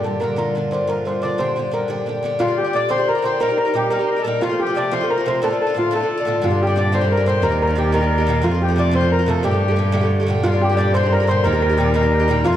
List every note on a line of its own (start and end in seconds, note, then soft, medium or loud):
0.00 2.42 G2 medium
0.00 0.19 A#2 soft
0.00 2.42 D3 medium
0.04 0.20 D3 medium
0.04 0.21 D4 soft
0.04 0.22 G4 soft
0.04 0.21 A4 medium
0.20 0.35 A#2 medium
0.20 0.36 D3 medium
0.20 0.37 D4 medium
0.20 0.38 G4 medium
0.20 0.36 A#4 medium
0.36 0.54 A#2 medium
0.36 0.54 D3 medium
0.36 0.56 D4 medium
0.36 0.56 F4 medium
0.36 0.70 A#4 medium
0.55 0.70 A#2 medium
0.55 0.71 D3 medium
0.55 0.72 D4 medium
0.55 0.73 F4 medium
0.71 0.86 A#2 medium
0.71 0.87 D3 medium
0.71 0.88 D4 medium
0.71 0.88 F4 medium
0.71 0.87 C5 medium
0.87 1.04 A#2 medium
0.87 1.05 D3 medium
0.87 1.06 D4 medium
0.87 1.07 F4 medium
0.87 1.07 A#4 medium
1.05 1.21 A#2 medium
1.05 1.22 D3 medium
1.05 1.23 D4 soft
1.05 1.23 F4 medium
1.05 1.23 C5 medium
1.22 1.37 A#2 medium
1.22 1.38 D3 medium
1.22 1.39 D4 medium
1.22 1.40 F4 medium
1.22 1.39 D5 medium
1.38 1.55 A#2 medium
1.38 1.56 D3 medium
1.38 1.57 D4 medium
1.38 1.57 G4 medium
1.38 1.74 C5 loud
1.56 1.70 A#2 medium
1.56 1.71 D3 medium
1.56 1.72 D4 soft
1.56 1.73 G4 medium
1.71 1.87 A#2 medium
1.71 1.88 D3 medium
1.71 1.89 D4 medium
1.71 1.89 G4 medium
1.71 1.90 A#4 medium
1.88 2.05 A#2 medium
1.88 2.06 D3 medium
1.88 2.07 D4 medium
1.88 2.25 G4 medium
1.88 2.07 G4 medium
2.06 2.21 A#2 soft
2.06 2.23 D3 medium
2.06 2.24 D4 soft
2.06 2.24 G4 medium
2.23 2.38 A#2 medium
2.23 2.39 D3 medium
2.23 2.39 D4 medium
2.23 2.40 G4 medium
2.39 2.48 A#2 medium
2.39 2.49 D3 medium
2.39 2.49 D4 medium
2.39 2.56 F4 loud
2.39 2.58 F4 medium
2.39 2.47 G4 medium
2.48 2.66 D3 soft
2.48 2.65 D4 soft
2.48 2.63 G4 soft
2.57 2.74 G4 medium
2.57 2.75 G4 medium
2.64 2.73 D3 soft
2.64 2.74 D4 medium
2.64 2.73 G4 medium
2.73 2.87 A#2 medium
2.73 2.88 D3 medium
2.73 2.89 D4 medium
2.73 2.90 G4 medium
2.73 2.90 D5 medium
2.73 2.91 D5 loud
2.89 2.98 A#2 medium
2.89 2.99 D3 medium
2.89 2.98 D4 medium
2.89 2.97 G4 medium
2.89 3.08 C5 medium
2.89 3.07 C5 loud
2.98 3.17 D3 soft
2.98 3.16 D4 medium
2.98 3.14 G4 medium
3.08 3.25 A#4 medium
3.08 3.24 A#4 medium
3.15 3.22 D3 soft
3.15 3.24 D4 soft
3.15 3.24 G4 medium
3.22 3.39 A#2 medium
3.22 3.40 D3 medium
3.22 3.41 D4 medium
3.22 3.41 G4 medium
3.22 3.39 C5 medium
3.22 3.40 C5 medium
3.40 3.49 A#2 medium
3.40 3.50 G3 medium
3.40 3.49 D#4 medium
3.40 3.47 G4 medium
3.40 3.56 A#4 loud
3.40 3.58 A#4 medium
3.48 3.67 G3 soft
3.48 3.65 D#4 soft
3.48 3.64 G4 medium
3.58 3.75 A#4 loud
3.58 3.76 A#4 medium
3.65 3.73 G3 soft
3.65 3.75 D#4 medium
3.65 3.74 G4 medium
3.74 3.89 A#2 medium
3.74 3.90 G3 medium
3.74 3.91 D#4 medium
3.74 3.90 G4 loud
3.74 3.92 G4 medium
3.74 3.91 G4 medium
3.90 4.00 A#2 medium
3.90 4.00 G3 medium
3.90 4.00 D#4 medium
3.90 3.98 G4 medium
3.90 4.37 A#4 medium
3.90 4.05 A#4 medium
3.99 4.18 G3 soft
3.99 4.17 D#4 soft
3.99 4.15 G4 medium
4.06 4.10 C5 medium
4.10 4.22 A#4 medium
4.16 4.25 G3 soft
4.16 4.25 D#4 soft
4.16 4.25 G4 soft
4.22 4.41 A#2 medium
4.22 4.42 G3 medium
4.22 4.25 A4 medium
4.22 4.42 A#4 medium
4.27 4.42 D#4 medium
4.27 4.43 G4 medium
4.41 4.50 C3 medium
4.41 4.50 F3 medium
4.41 4.50 A3 medium
4.41 4.60 F4 loud
4.41 4.60 F4 medium
4.41 4.48 F4 medium
4.49 4.68 F3 soft
4.49 4.67 A3 soft
4.49 4.65 F4 medium
4.60 4.76 G4 medium
4.60 4.94 G4 medium
4.67 4.75 F3 soft
4.67 4.76 A3 soft
4.67 4.75 F4 medium
4.75 4.90 C3 medium
4.75 4.90 F3 medium
4.75 4.92 A3 medium
4.75 4.92 F4 medium
4.75 4.91 D5 loud
4.91 5.00 C3 medium
4.91 5.00 F3 medium
4.91 5.01 A3 medium
4.91 5.00 F4 medium
4.91 5.10 C5 loud
4.91 5.10 C5 medium
5.01 5.19 F3 soft
5.01 5.18 A3 medium
5.01 5.16 F4 medium
5.09 5.40 A#4 medium
5.09 5.27 A#4 loud
5.18 5.25 F3 soft
5.18 5.27 A3 medium
5.18 5.26 F4 medium
5.26 5.41 C3 medium
5.26 5.42 F3 medium
5.26 5.43 A3 medium
5.26 5.43 F4 medium
5.26 5.43 C5 loud
5.42 5.51 A2 medium
5.42 5.51 D3 medium
5.42 5.51 D4 medium
5.42 5.49 F4 medium
5.42 5.58 A4 medium
5.42 5.60 A4 loud
5.50 5.69 D3 soft
5.50 5.68 D4 soft
5.50 5.65 F4 medium
5.60 5.77 A4 medium
5.60 5.76 A4 medium
5.67 5.75 D3 soft
5.67 5.75 D4 soft
5.67 5.75 F4 medium
5.74 5.90 A2 medium
5.74 5.91 D3 medium
5.74 5.91 D4 medium
5.74 5.93 F4 medium
5.74 5.92 F4 medium
5.79 5.93 F4 medium
5.91 6.00 A2 medium
5.91 6.01 D3 medium
5.91 6.01 D4 medium
5.91 5.99 F4 medium
5.91 6.44 A4 medium
5.96 6.41 A4 medium
6.00 6.19 D3 soft
6.00 6.18 D4 soft
6.00 6.16 F4 soft
6.18 6.25 D3 soft
6.18 6.26 D4 soft
6.18 6.26 F4 medium
6.25 6.41 A2 medium
6.25 6.41 D3 medium
6.25 6.42 D4 medium
6.25 6.44 F4 medium
6.42 7.44 G2 loud
6.42 6.51 A#2 medium
6.42 6.51 D3 medium
6.42 6.50 D4 medium
6.42 6.61 F4 medium
6.42 6.60 F4 medium
6.42 6.49 G4 medium
6.51 6.69 D3 soft
6.51 6.67 D4 soft
6.51 6.66 G4 soft
6.61 6.77 G4 medium
6.61 6.78 G4 medium
6.67 6.76 D3 soft
6.67 6.76 D4 medium
6.67 6.76 G4 medium
6.76 6.91 A#2 medium
6.76 6.92 D3 medium
6.76 6.93 D4 medium
6.76 6.93 G4 medium
6.76 6.94 D5 medium
6.76 6.93 D5 medium
6.92 7.01 A#2 medium
6.92 7.02 D3 medium
6.92 7.01 D4 medium
6.92 7.00 G4 medium
6.92 7.11 C5 medium
6.92 7.12 C5 medium
7.01 7.19 D3 soft
7.01 7.18 D4 soft
7.01 7.16 G4 medium
7.11 7.26 A#4 medium
7.17 7.26 D3 soft
7.17 7.27 D4 soft
7.17 7.26 G4 medium
7.26 7.41 A#2 medium
7.26 7.43 D3 medium
7.26 7.44 D4 medium
7.26 7.43 G4 medium
7.26 7.44 C5 medium
7.26 7.42 C5 medium
7.42 8.44 D#2 loud
7.42 7.51 A#2 medium
7.42 7.52 G3 medium
7.42 7.51 D#4 medium
7.42 7.49 G4 medium
7.42 7.59 A#4 medium
7.42 7.61 A#4 loud
7.50 7.69 G3 soft
7.50 7.68 D#4 medium
7.50 7.66 G4 medium
7.61 7.78 A#4 medium
7.61 7.78 A#4 loud
7.67 7.75 G3 soft
7.67 7.76 D#4 soft
7.67 7.76 G4 medium
7.75 7.91 A#2 medium
7.75 7.92 G3 medium
7.75 7.93 D#4 medium
7.75 7.94 G4 medium
7.92 8.02 A#2 medium
7.92 8.02 G3 medium
7.92 8.01 D#4 medium
7.92 8.00 G4 medium
7.92 8.41 A#4 medium
7.92 8.46 A#4 medium
8.01 8.20 G3 soft
8.01 8.19 D#4 soft
8.01 8.17 G4 soft
8.18 8.27 G3 soft
8.18 8.28 D#4 medium
8.18 8.27 G4 medium
8.27 8.41 A#2 medium
8.27 8.42 G3 medium
8.27 8.43 D#4 medium
8.27 8.44 G4 medium
8.42 9.45 F2 loud
8.42 8.51 C3 medium
8.42 8.52 F3 medium
8.42 8.52 A3 medium
8.42 8.50 F4 medium
8.42 8.62 F4 loud
8.42 8.62 F4 medium
8.51 8.70 F3 soft
8.51 8.69 A3 soft
8.51 8.67 F4 medium
8.62 8.78 G4 medium
8.68 8.76 F3 soft
8.68 8.77 A3 soft
8.68 8.77 F4 medium
8.76 8.90 C3 medium
8.76 8.91 F3 medium
8.76 8.92 A3 medium
8.76 8.92 F4 medium
8.76 8.95 D5 medium
8.76 8.94 D5 medium
8.91 9.01 C3 medium
8.91 9.02 F3 medium
8.91 9.01 A3 medium
8.91 8.99 F4 medium
8.91 9.11 C5 medium
9.01 9.20 F3 soft
9.01 9.19 A3 medium
9.01 9.18 F4 medium
9.12 9.27 A#4 medium
9.12 9.28 A#4 medium
9.19 9.27 F3 soft
9.19 9.28 A3 soft
9.19 9.27 F4 medium
9.26 9.43 C3 medium
9.26 9.43 F3 medium
9.26 9.43 A3 medium
9.26 9.45 F4 medium
9.26 9.43 A4 medium
9.43 10.42 G2 loud
9.43 9.52 A#2 medium
9.43 9.53 D3 medium
9.43 9.51 A3 medium
9.43 10.07 G4 medium
9.43 10.08 G4 medium
9.43 9.50 G4 medium
9.51 9.70 D3 soft
9.51 9.69 A3 soft
9.51 9.67 G4 medium
9.68 9.76 D3 soft
9.68 9.77 A3 soft
9.68 9.77 G4 medium
9.76 9.91 A#2 medium
9.76 9.92 D3 medium
9.76 9.93 A3 medium
9.76 9.94 G4 medium
9.92 10.02 A#2 medium
9.92 10.03 D3 medium
9.92 10.02 A3 medium
9.92 10.00 G4 medium
10.01 10.21 D3 soft
10.01 10.20 A3 medium
10.01 10.19 G4 medium
10.20 10.27 D3 medium
10.20 10.28 A3 medium
10.20 10.28 G4 medium
10.27 10.42 A#2 medium
10.27 10.43 D3 medium
10.27 10.44 A3 medium
10.27 10.45 G4 medium
10.43 11.46 G2 loud
10.43 10.53 A#2 medium
10.43 10.53 D3 medium
10.43 10.52 D4 medium
10.43 10.62 F4 loud
10.43 10.63 F4 medium
10.43 10.51 G4 medium
10.52 10.71 D3 soft
10.52 10.70 D4 soft
10.52 10.68 G4 soft
10.61 10.78 G4 loud
10.61 10.93 G4 medium
10.70 10.77 D3 soft
10.70 10.78 D4 soft
10.70 10.78 G4 medium
10.77 10.93 A#2 medium
10.77 10.94 D3 medium
10.77 10.94 D4 medium
10.77 10.95 G4 medium
10.77 10.93 D5 medium
10.94 11.03 A#2 medium
10.94 11.04 D3 medium
10.94 11.04 D4 medium
10.94 11.02 G4 medium
10.94 11.11 C5 loud
10.94 11.13 C5 medium
11.03 11.22 D3 soft
11.03 11.20 D4 medium
11.03 11.19 G4 soft
11.12 11.29 A#4 loud
11.12 11.29 A#4 medium
11.20 11.28 D3 medium
11.20 11.28 D4 soft
11.20 11.28 G4 medium
11.27 11.43 A#2 medium
11.27 11.45 D3 medium
11.27 11.45 D4 medium
11.27 11.45 G4 medium
11.27 11.44 C5 loud
11.27 11.45 C5 medium
11.44 12.47 D#2 loud
11.44 11.53 A#2 medium
11.44 11.54 G3 medium
11.44 11.53 D#4 medium
11.44 11.51 G4 medium
11.44 11.61 A#4 loud
11.44 11.93 A#4 medium
11.53 11.71 G3 soft
11.53 11.70 D#4 soft
11.53 11.68 G4 medium
11.62 11.79 A#4 loud
11.70 11.77 G3 soft
11.70 11.78 D#4 soft
11.70 11.78 G4 medium
11.77 11.93 A#2 medium
11.77 11.93 G3 medium
11.77 11.94 D#4 medium
11.77 11.95 G4 medium
11.94 12.03 A#2 medium
11.94 12.04 G3 medium
11.94 12.03 D#4 medium
11.94 12.02 G4 medium
11.94 12.47 A#4 medium
12.03 12.22 G3 soft
12.03 12.20 D#4 soft
12.03 12.18 G4 medium
12.20 12.28 G3 soft
12.20 12.29 D#4 soft
12.20 12.28 G4 medium
12.28 12.44 A#2 medium
12.28 12.45 G3 medium
12.28 12.46 D#4 medium
12.28 12.46 G4 medium
12.44 12.57 F2 loud
12.44 12.54 C3 medium
12.44 12.54 F3 medium
12.44 12.53 A3 medium
12.44 12.57 F4 loud
12.44 12.57 F4 medium
12.44 12.51 F4 medium
12.53 12.57 F4 medium